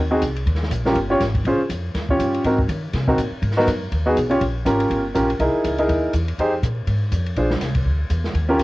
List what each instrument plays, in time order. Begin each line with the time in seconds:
Already playing: upright bass D#2
0.11 grand piano C4 D#4 F#4 G#4
0.22 upright bass C2, kick, hi-hat pedal, ride
0.36 ride
0.46 upright bass D#2, kick, ride
0.55 snare
0.63 snare
0.71 upright bass A#1, kick, hi-hat pedal, ride
0.85 grand piano C#4 F4 G4 A#4, snare
0.95 upright bass G1, kick, ride
1.10 grand piano C#4 F4 G4 C#5
1.20 upright bass G#1, kick, snare, hi-hat pedal, ride
1.34 kick, ride
1.45 upright bass A#1, grand piano C#4 F4 G#4 C5, kick, ride
1.58 muted upright bass stroke
1.70 upright bass F2, kick, hi-hat pedal, ride
1.94 upright bass D#2, kick, snare, ride
2.09 grand piano C#4 F4 G4 C#5, kick
2.19 upright bass G2, kick, hi-hat pedal, ride
2.34 ride
2.44 upright bass G#2, grand piano C4 D#4 F#4 A#4, kick, ride
2.58 kick
2.68 upright bass D#3, kick, hi-hat pedal, ride
2.93 upright bass C3, kick, snare, ride
3.08 grand piano C4 D#4 F#4 A#4, kick
3.18 upright bass A#2, kick, hi-hat pedal, ride
3.31 muted upright bass stroke
3.42 upright bass G#2, kick, ride
3.51 snare
3.57 grand piano B3 D#4 F#4 A#4, snare
3.67 upright bass F#2, kick, hi-hat pedal, ride
3.92 upright bass D#2, kick, ride
4.06 grand piano B3 D#4 F#4 G#4
4.16 upright bass B1, kick, hi-hat pedal, ride
4.30 grand piano C#4 F4 G4 C#5, ride
4.41 upright bass A#1, kick, ride
4.65 upright bass G#1, grand piano C#4 F4 G4 A#4, kick, hi-hat pedal, ride
4.80 ride
4.90 upright bass G1, kick, ride
5.15 upright bass A#1, grand piano C#4 F4 G4 A#4, kick, hi-hat pedal, ride
5.30 ride
5.39 upright bass C2, grand piano D#4 E4 G#4 A#4, kick, ride
5.54 muted upright bass stroke
5.64 upright bass C#2, kick, hi-hat pedal, ride
5.78 grand piano D#4 E4 G#4 A#4, ride
5.89 upright bass D#2, kick, ride
6.13 upright bass E2, kick, hi-hat pedal, ride
6.28 ride
6.38 upright bass F2, grand piano D#4 G4 G#4 C5, kick, ride
6.63 upright bass A#2, kick, hi-hat pedal, ride
6.87 upright bass G#2, kick, ride
7.12 upright bass F2, kick, hi-hat pedal, ride
7.26 ride
7.36 upright bass A#1, grand piano D4 F4 G#4 C5, kick, ride
7.50 snare
7.61 upright bass C2, kick, snare, hi-hat pedal, ride
7.75 kick, ride
7.85 upright bass D2, kick
8.10 upright bass E2, kick, hi-hat pedal, ride
8.24 snare
8.34 upright bass D#2, kick, ride
8.49 grand piano C#4 F4 G4 A#4
8.59 upright bass C#2, kick, hi-hat pedal, ride